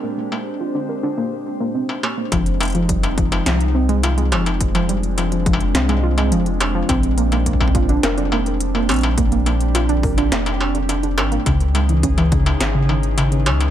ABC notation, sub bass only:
X:1
M:4/4
L:1/8
Q:1/4=105
K:Fdor
V:1 name="Sub bass" clef=bass
z8 | F,,,4 C,,3 F,,,- | F,,,4 C,,2 F,,,2 | B,,,4 F,,,3 B,,,- |
B,,,4 F,,,3 A,,, | _D,,4 A,,,3 D,, |]